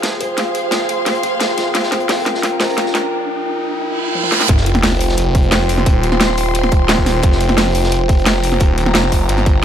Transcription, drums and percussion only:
0.03 snare medium
0.03 snare loud
0.03 closed hi-hat medium
0.21 closed hi-hat medium
0.37 snare medium
0.37 closed hi-hat medium
0.55 closed hi-hat medium
0.71 snare loud
0.71 snare medium
0.71 closed hi-hat medium
0.71 closed hi-hat loud
0.89 closed hi-hat medium
1.06 snare medium
1.06 closed hi-hat medium
1.15 closed hi-hat soft
1.23 closed hi-hat medium
1.40 snare loud
1.40 snare medium
1.40 closed hi-hat medium
1.58 snare soft
1.58 closed hi-hat medium
1.74 snare medium
1.74 closed hi-hat medium
1.83 snare soft
1.92 snare medium
1.92 closed hi-hat medium
2.00 closed hi-hat soft
2.08 snare medium
2.08 snare loud
2.08 closed hi-hat medium
2.08 open hi-hat medium
2.26 snare medium
2.26 closed hi-hat medium
2.35 snare soft
2.43 snare medium
2.43 closed hi-hat medium
2.60 snare loud
2.60 snare medium
2.60 closed hi-hat medium
2.60 open hi-hat medium
2.77 snare medium
2.77 closed hi-hat medium
2.86 snare soft
2.95 snare medium
2.95 closed hi-hat medium
4.15 high tom medium
4.23 high tom medium
4.32 snare medium
4.41 snare medium
4.49 kick loud
4.49 closed hi-hat medium
4.49 closed hi-hat loud
4.57 snare soft
4.66 closed hi-hat medium
4.75 snare medium
4.75 closed hi-hat soft
4.83 snare loud
4.83 closed hi-hat loud
4.83 open hi-hat medium
4.92 snare soft
5.00 closed hi-hat medium
5.00 open hi-hat medium
5.09 snare soft
5.18 closed hi-hat loud
5.18 closed hi-hat medium
5.35 kick loud
5.35 closed hi-hat medium
5.43 closed hi-hat soft
5.51 snare loud
5.51 closed hi-hat medium
5.51 closed hi-hat loud
5.69 closed hi-hat medium
5.69 open hi-hat medium
5.78 snare medium
5.86 kick loud
5.86 closed hi-hat medium
6.03 closed hi-hat medium
6.12 snare medium
6.21 snare loud
6.21 closed hi-hat loud
6.21 closed hi-hat medium
6.29 snare soft
6.37 closed hi-hat medium
6.37 open hi-hat medium
6.55 closed hi-hat medium
6.55 closed hi-hat loud
6.63 snare soft
6.63 closed hi-hat soft
6.71 kick loud
6.71 closed hi-hat medium
6.89 snare loud
6.89 closed hi-hat medium
6.98 kick medium
7.06 snare soft
7.06 snare medium
7.06 closed hi-hat medium
7.06 open hi-hat medium
7.23 kick loud
7.23 closed hi-hat medium
7.32 snare soft
7.41 closed hi-hat medium
7.49 snare medium
7.49 closed hi-hat soft
7.57 snare loud
7.57 closed hi-hat medium
7.57 open hi-hat medium
7.66 snare soft
7.74 closed hi-hat medium
7.74 open hi-hat medium
7.84 snare soft
7.92 closed hi-hat medium
8.09 kick loud
8.09 closed hi-hat medium
8.18 closed hi-hat soft
8.26 snare loud
8.26 closed hi-hat medium
8.44 closed hi-hat medium
8.44 open hi-hat medium
8.52 snare medium
8.60 kick loud
8.60 closed hi-hat medium
8.78 closed hi-hat medium
8.86 snare medium
8.94 snare loud
8.94 closed hi-hat loud
8.94 closed hi-hat medium
9.03 snare soft
9.12 kick medium
9.12 closed hi-hat medium
9.12 open hi-hat medium
9.29 closed hi-hat medium
9.37 snare soft
9.37 closed hi-hat soft
9.46 kick loud
9.46 closed hi-hat medium

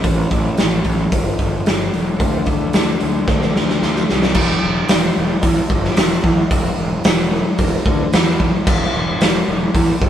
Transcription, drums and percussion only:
0.04 kick loud
0.04 open hi-hat medium
0.31 kick medium
0.31 open hi-hat soft
0.57 snare loud
0.57 open hi-hat medium
0.84 kick medium
0.84 open hi-hat soft
1.12 kick loud
1.12 open hi-hat medium
1.39 kick medium
1.39 open hi-hat soft
1.66 snare loud
1.66 open hi-hat medium
1.94 open hi-hat soft
2.20 kick loud
2.20 open hi-hat medium
2.46 kick medium
2.46 open hi-hat soft
2.73 snare loud
2.73 open hi-hat medium
3.00 open hi-hat soft
3.28 kick loud
3.28 snare medium
3.42 snare medium
3.56 snare medium
3.69 snare medium
3.82 snare medium
3.96 snare medium
4.09 snare medium
4.22 snare medium
4.35 kick medium
4.35 crash loud
4.88 snare loud
4.88 open hi-hat medium
5.42 kick loud
5.42 open hi-hat medium
5.70 kick medium
5.84 snare soft
5.97 snare loud
5.97 open hi-hat medium
6.24 kick medium
6.51 kick loud
6.51 open hi-hat medium
7.04 snare loud
7.04 open hi-hat medium
7.58 kick medium
7.58 open hi-hat medium
7.86 kick medium
8.13 snare loud
8.13 open hi-hat medium
8.40 kick medium
8.67 kick loud
8.67 crash medium
9.21 snare loud
9.21 open hi-hat medium
9.74 kick loud
9.74 open hi-hat medium
10.02 kick medium

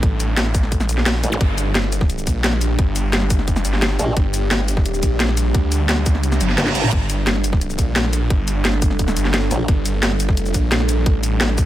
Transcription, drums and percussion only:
0.03 kick loud
0.03 closed hi-hat medium
0.20 closed hi-hat medium
0.20 shaker medium
0.37 snare loud
0.37 closed hi-hat medium
0.46 snare soft
0.55 kick loud
0.55 closed hi-hat medium
0.55 shaker medium
0.63 snare soft
0.72 kick medium
0.72 closed hi-hat medium
0.72 shaker soft
0.80 snare medium
0.80 shaker soft
0.89 closed hi-hat medium
0.89 shaker medium
0.98 snare soft
1.06 snare loud
1.06 closed hi-hat medium
1.24 snare soft
1.24 closed hi-hat medium
1.24 shaker medium
1.41 kick loud
1.41 closed hi-hat medium
1.58 closed hi-hat medium
1.58 shaker medium
1.75 snare loud
1.75 closed hi-hat medium
1.84 snare soft
1.92 closed hi-hat medium
1.92 shaker medium
2.01 kick loud
2.01 snare soft
2.10 closed hi-hat medium
2.10 shaker soft
2.18 shaker soft
2.27 kick medium
2.27 closed hi-hat medium
2.27 shaker medium
2.44 snare loud
2.44 closed hi-hat medium
2.53 snare soft
2.61 closed hi-hat medium
2.61 shaker medium
2.79 kick loud
2.79 closed hi-hat medium
2.96 closed hi-hat medium
2.96 shaker medium
3.13 snare loud
3.13 closed hi-hat medium
3.22 snare soft
3.30 kick loud
3.30 closed hi-hat medium
3.30 shaker medium
3.39 snare soft
3.48 kick medium
3.48 closed hi-hat medium
3.48 shaker soft
3.56 snare medium
3.56 shaker soft
3.65 closed hi-hat medium
3.65 shaker medium
3.74 snare soft
3.82 snare loud
3.82 closed hi-hat medium
3.99 snare soft
3.99 closed hi-hat loud
3.99 shaker medium
4.17 kick loud
4.17 closed hi-hat medium
4.34 closed hi-hat loud
4.34 shaker medium
4.51 snare loud
4.51 closed hi-hat medium
4.60 snare soft
4.68 closed hi-hat loud
4.68 shaker medium
4.77 kick loud
4.77 snare soft
4.86 closed hi-hat medium
4.86 shaker soft
4.94 shaker soft
5.03 kick medium
5.03 closed hi-hat medium
5.03 shaker medium
5.20 snare loud
5.20 closed hi-hat medium
5.29 snare soft
5.37 closed hi-hat loud
5.37 shaker medium
5.55 kick loud
5.55 closed hi-hat medium
5.72 closed hi-hat loud
5.72 shaker medium
5.89 snare loud
5.89 closed hi-hat medium
5.98 snare soft
6.06 kick loud
6.06 closed hi-hat loud
6.06 shaker medium
6.15 snare soft
6.24 closed hi-hat medium
6.24 shaker soft
6.32 snare medium
6.32 shaker soft
6.41 closed hi-hat loud
6.41 high tom medium
6.41 shaker medium
6.49 snare soft
6.58 snare loud
6.58 closed hi-hat medium
6.58 mid tom medium
6.67 snare medium
6.75 snare soft
6.75 closed hi-hat loud
6.75 shaker medium
6.84 mid tom medium
6.92 kick loud
6.92 closed hi-hat medium
7.10 closed hi-hat loud
7.10 shaker medium
7.27 snare loud
7.27 closed hi-hat medium
7.36 snare soft
7.44 closed hi-hat loud
7.44 shaker medium
7.53 kick loud
7.53 snare soft
7.61 closed hi-hat medium
7.61 shaker soft
7.70 shaker soft
7.79 kick medium
7.79 closed hi-hat medium
7.79 shaker medium
7.96 snare loud
7.96 closed hi-hat medium
8.05 snare medium
8.13 closed hi-hat loud
8.13 shaker medium
8.30 kick loud
8.30 closed hi-hat medium
8.48 closed hi-hat loud
8.48 shaker medium
8.65 snare loud
8.65 closed hi-hat medium
8.73 snare soft
8.82 kick loud
8.82 closed hi-hat medium
8.82 shaker medium
8.91 snare soft
8.99 kick medium
8.99 closed hi-hat medium
8.99 shaker soft
9.08 snare medium
9.08 shaker soft
9.17 closed hi-hat medium
9.17 shaker medium
9.25 snare soft
9.34 snare loud
9.34 closed hi-hat medium
9.51 snare soft
9.51 closed hi-hat loud
9.51 shaker medium
9.68 kick loud
9.68 closed hi-hat medium
9.86 closed hi-hat medium
9.86 shaker medium
10.03 snare loud
10.03 closed hi-hat medium
10.11 snare soft
10.20 closed hi-hat medium
10.20 shaker medium
10.29 kick loud
10.29 snare soft
10.37 closed hi-hat medium
10.37 shaker soft
10.46 shaker soft
10.54 kick medium
10.54 closed hi-hat medium
10.54 shaker medium
10.72 snare loud
10.72 closed hi-hat medium
10.80 snare medium
10.89 closed hi-hat loud
10.89 shaker medium
11.06 kick loud
11.06 closed hi-hat medium
11.23 closed hi-hat medium
11.23 shaker medium
11.41 snare loud
11.41 closed hi-hat medium
11.49 snare soft
11.58 kick loud
11.58 closed hi-hat medium
11.58 shaker medium

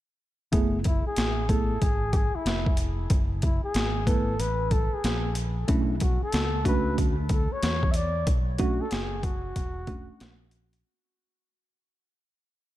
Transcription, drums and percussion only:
0.53 kick loud
0.53 closed hi-hat medium
0.84 kick medium
0.84 closed hi-hat medium
1.16 snare loud
1.16 closed hi-hat medium
1.49 kick medium
1.49 closed hi-hat medium
1.82 kick medium
1.82 closed hi-hat medium
2.13 kick loud
2.13 closed hi-hat medium
2.46 snare medium
2.46 closed hi-hat medium
2.66 kick medium
2.77 closed hi-hat medium
3.10 kick loud
3.10 closed hi-hat medium
3.42 kick medium
3.42 closed hi-hat medium
3.74 snare loud
3.74 closed hi-hat medium
4.07 kick medium
4.07 closed hi-hat medium
4.40 closed hi-hat medium
4.71 kick medium
4.71 closed hi-hat medium
5.04 snare medium
5.04 closed hi-hat medium
5.35 closed hi-hat medium
5.68 kick loud
5.68 closed hi-hat medium
6.00 kick medium
6.00 closed hi-hat medium
6.32 snare loud
6.32 closed hi-hat medium
6.65 kick medium
6.65 closed hi-hat medium
6.98 kick medium
6.98 closed hi-hat medium
7.29 kick medium
7.29 closed hi-hat medium
7.63 snare medium
7.63 closed hi-hat medium
7.83 kick medium
7.94 closed hi-hat medium
8.27 kick loud
8.27 closed hi-hat medium
8.58 kick medium
8.58 closed hi-hat medium
8.91 snare loud
8.91 closed hi-hat medium
9.23 kick medium
9.23 closed hi-hat medium
9.56 kick medium
9.56 closed hi-hat medium
9.87 kick loud
9.87 closed hi-hat medium
10.20 snare medium
10.20 closed hi-hat medium
10.51 closed hi-hat medium
10.73 closed hi-hat medium

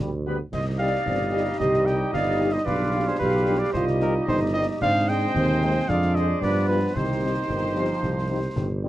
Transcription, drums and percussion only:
0.53 concert bass drum medium
0.53 snare medium
0.53 crash soft
1.06 concert bass drum medium
1.06 snare medium
1.60 concert bass drum medium
1.60 snare medium
1.74 snare medium
1.87 snare soft
2.14 concert bass drum medium
2.14 snare medium
2.67 concert bass drum medium
2.67 snare medium
3.20 concert bass drum medium
3.20 snare medium
3.74 concert bass drum medium
3.74 snare medium
3.87 snare medium
4.00 snare medium
4.28 concert bass drum medium
4.28 snare medium
4.81 concert bass drum medium
4.81 snare medium
4.81 crash soft
5.35 concert bass drum medium
5.35 snare medium
5.89 concert bass drum medium
5.89 snare medium
6.02 snare medium
6.16 snare soft
6.42 concert bass drum medium
6.42 snare medium
6.95 concert bass drum medium
6.95 snare medium
7.49 concert bass drum medium
7.49 snare medium
8.03 concert bass drum medium
8.03 snare medium
8.56 concert bass drum medium
8.56 snare medium

